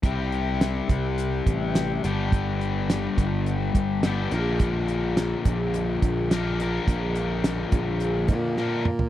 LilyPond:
<<
  \new Staff \with { instrumentName = "Distorted electric guitar" } { \time 4/4 \key c \mixolydian \tempo 4 = 105 <c g c' e' g'>2.~ <c g c' e' g'>8 <g, d g b d' g'>8~ | <g, d g b d' g'>2. <g, d g b d' g'>8 <bes, d f bes d' bes'>8~ | <bes, d f bes d' bes'>2. <bes, d f bes d' bes'>8 <bes, d f bes d' bes'>8~ | <bes, d f bes d' bes'>2. <bes, d f bes d' bes'>8 r8 | }
  \new Staff \with { instrumentName = "Picked electric bass" } { \clef bass \time 4/4 \key c \mixolydian c,4. c,4 a,,4 g,,8~ | g,,4. g,,4 g,,4 bes,,8~ | bes,,4. bes,,4 bes,,4. | bes,,4. bes,,4 bes,4. | }
  \new DrumStaff \with { instrumentName = "Drums" } \drummode { \time 4/4 <hh bd>8 hh8 <hh sn>8 <hh bd>8 hh8 <hh bd>8 <hh sn>8 hh8 | <hh bd>8 hh8 <hh sn>8 <hh bd>8 hh8 <hh bd>8 <hh sn>8 hh8 | <hh bd>8 hh8 <hh sn>8 <hh bd>8 hh8 <hh bd>8 <hh sn>8 hh8 | <hh bd>8 hh8 <hh sn>8 <hh bd>8 hh8 <hh bd>8 sn8 toml16 tomfh16 | }
>>